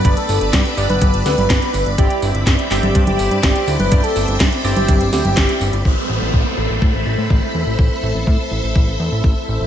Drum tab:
CC |----------------|----------------|----------------|x---------------|
HH |xxoxxxoxxxoxxxox|xxoxxxoxxxoxxxox|xxoxxxoxxxoxxxox|----------------|
CP |----x-------x---|----x-x-----x---|----x-------x---|----------------|
SD |----o-----o-o---|----o-------o---|----o-----o-o---|----------------|
CG |-------oo--o----|-------o-o-----o|-------oo--o----|----------------|
BD |o---o---o---o---|o---o---o---o---|o---o---o---o---|o---o---o---o---|

CC |----------------|
HH |----------------|
CP |----------------|
SD |----------------|
CG |----------------|
BD |o---o---o---o---|